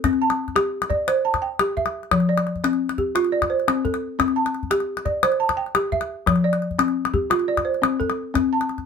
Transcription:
0.00 0.22 A4 medium
0.04 0.39 C4 medium
0.04 calabash thump medium
0.04 calabash click medium
0.13 calabash click soft
0.22 0.73 A5 medium
0.30 calabash click soft
0.48 calabash thump soft
0.48 calabash click soft
0.56 0.90 G4 medium
0.56 calabash click medium
0.82 calabash click soft
0.90 1.42 D5 medium
0.90 calabash thump medium
0.90 calabash click soft
1.08 1.43 C5 medium
1.08 calabash click medium
1.25 1.77 A5 medium
1.34 calabash thump soft
1.34 calabash click soft
1.42 1.94 G5 medium
1.59 1.94 G4 medium
1.59 calabash click medium
1.77 2.29 E5 medium
1.77 calabash thump medium
1.86 calabash click soft
2.03 calabash click soft
2.11 2.46 F3 medium
2.11 calabash thump medium
2.11 calabash click medium
2.20 calabash click soft
2.29 2.81 D5 medium
2.38 calabash click soft
2.47 calabash click soft
2.56 calabash thump soft
2.64 2.98 C4 medium
2.64 calabash click medium
2.73 calabash click soft
2.89 calabash click soft
2.98 3.50 G4 medium
2.98 calabash thump medium
2.98 calabash click soft
3.15 3.50 F4 medium
3.15 calabash click medium
3.25 calabash click soft
3.32 3.85 D5 medium
3.42 calabash thump soft
3.42 calabash click soft
3.50 4.02 C5 medium
3.60 calabash click soft
3.68 4.02 C4 medium
3.68 calabash click medium
3.85 4.37 A4 medium
3.85 calabash thump medium
3.94 calabash click soft
4.19 4.54 C4 medium
4.19 calabash thump medium
4.19 calabash click medium
4.28 calabash click soft
4.36 4.88 A5 medium
4.46 calabash click soft
4.55 calabash click soft
4.63 calabash thump soft
4.71 5.06 G4 medium
4.71 calabash click medium
4.80 calabash click soft
4.97 calabash click soft
5.05 5.58 D5 medium
5.05 calabash thump medium
5.05 calabash click soft
5.23 5.58 C5 medium
5.23 calabash click medium
5.32 calabash click soft
5.40 5.92 A5 medium
5.49 calabash thump soft
5.49 calabash click soft
5.57 6.09 G5 medium
5.66 calabash click soft
5.75 6.10 G4 medium
5.75 calabash click medium
5.92 6.44 E5 medium
5.92 calabash thump medium
6.01 calabash click soft
6.26 6.61 F3 medium
6.26 calabash thump medium
6.26 calabash click medium
6.36 calabash click soft
6.44 6.96 D5 medium
6.53 calabash click soft
6.62 calabash click soft
6.71 calabash thump soft
6.79 7.13 C4 medium
6.79 calabash click medium
6.88 calabash click soft
7.05 calabash click soft
7.14 7.66 G4 medium
7.14 calabash thump medium
7.14 calabash click soft
7.30 7.65 F4 medium
7.30 calabash click medium
7.39 calabash click soft
7.48 8.00 D5 medium
7.57 calabash thump soft
7.57 calabash click soft
7.65 8.17 C5 medium
7.74 calabash click soft
7.82 8.17 C4 medium
7.82 calabash click medium
8.00 8.52 A4 medium
8.00 calabash thump medium
8.10 calabash click soft
8.34 8.69 C4 medium
8.34 calabash thump medium
8.34 calabash click medium
8.53 8.86 A5 medium
8.61 calabash click soft
8.69 calabash click soft
8.78 calabash thump soft
8.78 calabash click soft

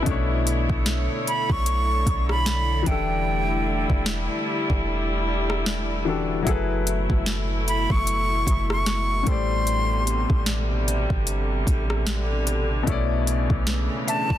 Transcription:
0.00 2.81 B2 medium
0.00 2.83 E4 medium
0.05 0.67 B1 loud
0.05 6.43 D3 medium
0.05 2.82 A3 medium
0.05 2.84 A3 medium
0.05 2.83 D4 medium
0.05 2.84 C#5 medium
0.05 kick loud
0.05 closed hi-hat medium
0.09 2.84 E4 medium
0.09 2.85 C#5 medium
0.47 closed hi-hat medium
0.70 1.08 B1 loud
0.70 kick medium
0.86 snare loud
0.86 closed hi-hat medium
1.27 1.53 B5 loud
1.27 closed hi-hat medium
1.50 2.04 B1 loud
1.50 2.30 C#6 loud
1.50 kick medium
1.66 closed hi-hat medium
2.06 2.84 B1 loud
2.06 kick loud
2.06 closed hi-hat medium
2.29 2.89 B5 loud
2.29 cross-stick loud
2.46 snare loud
2.46 closed hi-hat medium
2.83 6.01 E3 medium
2.83 6.02 D4 medium
2.83 kick loud
2.83 closed hi-hat medium
2.87 3.86 E1 loud
2.87 6.43 G3 medium
2.87 6.43 A3 medium
2.87 6.03 E4 medium
2.87 6.43 E4 medium
2.87 6.04 G4 medium
2.87 4.07 G5 medium
2.91 6.05 A4 medium
3.90 4.28 E1 loud
3.90 kick medium
4.06 snare loud
4.70 6.43 E1 loud
4.70 kick medium
5.50 cross-stick loud
5.66 snare loud
6.05 6.46 E3 medium
6.05 6.46 D4 medium
6.05 6.47 F#4 medium
6.05 6.47 G4 medium
6.09 6.47 A4 medium
6.42 9.21 F#3 medium
6.42 9.22 E4 medium
6.47 7.07 F#1 loud
6.47 9.24 A2 medium
6.47 12.83 B2 medium
6.47 9.24 A3 medium
6.47 9.24 E4 medium
6.47 9.23 G#4 medium
6.47 9.24 A4 medium
6.47 8.05 F#5 medium
6.47 kick loud
6.47 closed hi-hat medium
6.51 9.25 B4 medium
6.87 closed hi-hat medium
7.10 7.87 F#1 loud
7.10 kick loud
7.26 snare loud
7.26 closed hi-hat medium
7.68 7.93 B5 loud
7.68 closed hi-hat medium
7.90 8.45 F#1 medium
7.90 8.71 C#6 loud
7.90 kick medium
8.07 closed hi-hat medium
8.47 9.24 F#1 loud
8.47 kick loud
8.47 closed hi-hat medium
8.70 9.30 C#6 loud
8.70 cross-stick loud
8.86 snare loud
8.86 closed hi-hat medium
9.23 12.41 A2 medium
9.23 14.38 D3 medium
9.23 12.42 G3 medium
9.23 12.83 G3 medium
9.23 kick loud
9.23 closed hi-hat medium
9.27 10.26 A1 loud
9.27 12.83 C3 medium
9.27 12.43 A4 medium
9.27 12.44 C5 medium
9.27 10.48 C6 loud
9.32 12.45 D5 medium
9.67 closed hi-hat medium
10.07 closed hi-hat medium
10.30 11.07 A1 loud
10.30 kick loud
10.46 snare loud
10.46 closed hi-hat medium
10.88 closed hi-hat medium
11.10 11.65 G1 loud
11.10 kick medium
11.27 closed hi-hat medium
11.67 12.83 A1 loud
11.67 kick loud
11.67 closed hi-hat medium
11.90 cross-stick loud
12.07 snare loud
12.07 closed hi-hat medium
12.47 closed hi-hat medium
12.83 14.38 B2 medium
12.83 14.38 E3 medium
12.83 14.38 A3 medium
12.83 kick loud
12.87 13.48 B1 loud
12.87 14.38 C#3 medium
12.87 14.38 E4 medium
12.87 14.38 C#5 medium
12.87 closed hi-hat medium
12.91 14.38 D5 medium
13.27 closed hi-hat medium
13.50 13.89 B1 loud
13.50 kick loud
13.67 snare loud
13.67 closed hi-hat medium
14.08 14.38 E5 medium
14.08 14.38 A5 loud
14.08 closed hi-hat medium
14.30 14.38 B1 loud
14.30 kick loud

